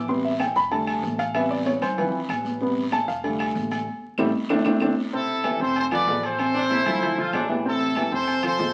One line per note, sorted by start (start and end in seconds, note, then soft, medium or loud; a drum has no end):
0.00 0.50 A1 loud
0.08 0.29 C3 medium
0.08 0.30 G3 medium
0.08 0.30 B3 medium
0.08 0.24 C6 medium
0.08 high conga soft
0.08 long guiro medium
0.24 0.40 E5 medium
0.24 high conga soft
0.39 0.55 G5 medium
0.39 high conga loud
0.39 low agogo loud
0.39 short guiro medium
0.39 claves medium
0.55 1.00 F1 medium
0.55 0.71 B5 loud
0.55 high conga soft
0.55 short guiro medium
0.71 1.16 D3 medium
0.71 1.16 G3 medium
0.71 1.17 A3 medium
0.71 1.16 A5 medium
0.71 high conga soft
0.71 low agogo medium
0.71 long guiro medium
0.87 high conga soft
0.87 low agogo loud
0.87 claves medium
1.02 1.76 A1 loud
1.02 high conga medium
1.02 short guiro medium
1.19 1.34 F5 medium
1.19 low agogo loud
1.19 short guiro medium
1.34 1.79 C3 medium
1.34 1.80 G3 medium
1.34 1.80 B3 medium
1.34 1.50 E5 medium
1.34 high conga soft
1.34 low agogo loud
1.34 long guiro medium
1.34 claves medium
1.51 1.66 D5 medium
1.66 1.81 C#5 medium
1.66 high conga loud
1.66 low agogo medium
1.66 short guiro medium
1.81 2.26 D2 medium
1.81 1.97 C5 loud
1.81 high conga soft
1.81 low conga medium
1.81 low agogo loud
1.81 short guiro medium
1.81 claves medium
1.97 2.19 E3 medium
1.97 2.19 F3 soft
1.97 2.19 C4 medium
1.97 2.57 B4 medium
1.97 high conga soft
1.97 low conga medium
1.97 low agogo medium
1.97 long guiro medium
2.13 high conga soft
2.29 3.02 A1 loud
2.29 high conga medium
2.29 low agogo loud
2.29 short guiro medium
2.29 claves medium
2.45 high conga medium
2.45 short guiro medium
2.61 2.82 C3 medium
2.61 2.82 G3 medium
2.61 2.82 B3 medium
2.61 high conga soft
2.61 long guiro medium
2.76 high conga soft
2.92 3.08 A5 medium
2.92 high conga medium
2.92 low agogo loud
2.92 short guiro medium
2.92 claves medium
3.08 3.52 F1 medium
3.08 3.52 F5 medium
3.08 high conga soft
3.08 short guiro medium
3.24 3.84 D3 medium
3.24 3.84 G3 medium
3.24 3.84 A3 medium
3.24 high conga soft
3.24 low agogo medium
3.24 long guiro medium
3.39 high conga soft
3.39 low agogo loud
3.39 claves medium
3.55 3.85 A1 medium
3.55 high conga medium
3.55 short guiro medium
3.71 high conga medium
3.71 low agogo loud
3.71 short guiro medium
4.18 4.30 A1 medium
4.18 4.29 G3 medium
4.18 4.29 A3 loud
4.18 4.29 C4 loud
4.18 high conga loud
4.18 high timbale loud
4.18 long guiro loud
4.18 claves loud
4.49 4.61 D2 loud
4.49 4.60 A3 loud
4.49 4.60 C4 medium
4.49 4.60 D4 loud
4.49 high conga loud
4.49 high timbale loud
4.49 long guiro loud
4.49 claves loud
4.65 4.77 D2 medium
4.65 4.76 A3 medium
4.65 4.76 C4 loud
4.65 4.76 D4 medium
4.65 high conga loud
4.65 high timbale loud
4.65 long guiro loud
4.65 claves loud
4.80 4.93 D2 loud
4.80 4.92 A3 medium
4.80 4.92 C4 loud
4.80 4.92 D4 loud
4.80 high conga loud
4.80 high timbale medium
4.80 long guiro medium
4.80 claves loud
5.13 5.39 C3 medium
5.13 5.39 C4 medium
5.13 5.58 E4 medium
5.13 5.58 A4 loud
5.13 5.39 C5 medium
5.13 high conga soft
5.28 high conga soft
5.44 5.57 E3 medium
5.44 5.58 E4 medium
5.44 5.58 G4 medium
5.44 high conga loud
5.44 low agogo loud
5.44 claves medium
5.59 6.04 F1 loud
5.59 5.86 C3 loud
5.59 5.86 C4 medium
5.59 5.76 A4 medium
5.59 5.86 C5 loud
5.59 5.76 C5 medium
5.59 high conga soft
5.76 5.84 A4 medium
5.76 5.84 C5 loud
5.76 high conga soft
5.76 low agogo medium
5.91 6.05 F3 medium
5.91 6.05 F4 medium
5.91 6.05 A4 medium
5.91 6.22 B4 medium
5.91 6.22 D5 medium
5.91 high conga soft
5.91 low agogo loud
5.91 claves medium
6.07 6.80 A1 loud
6.07 6.33 F3 medium
6.07 6.33 F4 medium
6.07 6.34 A4 medium
6.07 high conga medium
6.07 low timbale medium
6.23 7.46 A4 medium
6.23 7.46 C5 loud
6.23 low agogo loud
6.39 6.52 C3 medium
6.39 6.52 C4 medium
6.39 6.52 C5 medium
6.39 high conga soft
6.39 low agogo loud
6.39 claves medium
6.54 6.81 C3 medium
6.54 6.81 C4 medium
6.54 6.62 D4 loud
6.54 6.81 C5 medium
6.54 high conga soft
6.70 6.85 E4 medium
6.70 high conga loud
6.70 low agogo medium
6.86 7.15 D2 loud
6.86 6.99 F3 medium
6.86 7.00 E4 loud
6.86 6.99 F4 medium
6.86 6.99 A4 medium
6.86 high conga soft
6.86 low conga medium
6.86 low agogo loud
6.86 claves medium
7.02 7.15 F3 medium
7.02 7.16 E4 medium
7.02 7.15 F4 medium
7.02 7.15 A4 medium
7.02 high conga soft
7.02 low agogo medium
7.17 7.32 B1 medium
7.17 7.44 F3 medium
7.17 7.33 F4 loud
7.17 7.44 F4 medium
7.17 7.44 A4 medium
7.17 high conga soft
7.32 8.06 A1 medium
7.32 7.55 D4 medium
7.32 high conga medium
7.32 low timbale medium
7.32 low agogo loud
7.32 claves medium
7.49 7.62 E3 medium
7.49 7.62 E4 medium
7.49 7.62 G4 medium
7.49 high conga medium
7.65 7.91 C3 loud
7.65 7.91 C4 loud
7.65 8.10 E4 medium
7.65 8.10 A4 loud
7.65 7.91 C5 medium
7.65 high conga soft
7.80 high conga soft
7.95 8.09 E3 medium
7.95 8.09 E4 medium
7.95 8.10 G4 medium
7.95 high conga loud
7.95 low agogo loud
7.95 claves medium
8.11 8.55 F1 medium
8.11 8.37 C3 loud
8.11 8.38 C4 loud
8.11 8.44 A4 medium
8.11 8.38 C5 medium
8.11 8.44 C5 loud
8.11 high conga soft
8.27 high conga soft
8.27 low agogo medium
8.43 8.56 F3 medium
8.43 8.56 F4 medium
8.43 8.57 A4 medium
8.43 8.73 A4 medium
8.43 8.73 C5 loud
8.43 high conga soft
8.43 low agogo loud
8.43 claves medium
8.58 8.73 A1 loud
8.58 8.73 F3 medium
8.58 8.73 F4 medium
8.58 8.73 A4 medium
8.58 high conga medium
8.58 low timbale medium